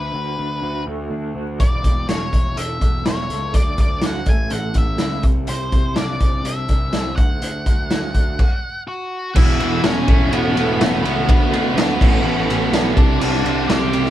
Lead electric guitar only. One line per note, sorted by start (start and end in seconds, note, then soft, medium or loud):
0.00 0.82 B4 medium
1.60 2.08 D5 medium
2.09 2.59 C#5 medium
2.57 3.07 E5 medium
3.06 3.55 C#5 medium
3.55 3.80 D5 medium
3.81 4.05 D5 medium
4.06 4.29 F#5 medium
4.29 4.53 G#5 medium
4.52 4.74 F#5 medium
4.78 5.22 E5 medium
5.49 5.94 C5 medium
5.97 6.47 D5 medium
6.46 7.14 E5 medium
7.16 8.82 F#5 medium
8.88 9.32 F#4 medium
8.88 9.36 F#5 medium
9.37 9.81 E4 medium
9.37 9.81 E5 loud
9.86 10.29 C#4 medium
9.86 10.35 C#5 medium
10.33 11.00 B3 medium
10.33 11.05 B4 medium
11.05 12.93 B3 medium
11.05 13.03 B4 loud
12.96 13.19 D4 medium
12.96 13.22 D5 loud
13.22 13.66 D4 medium
13.22 13.71 D5 loud
13.69 14.10 G4 medium
13.69 14.10 G5 loud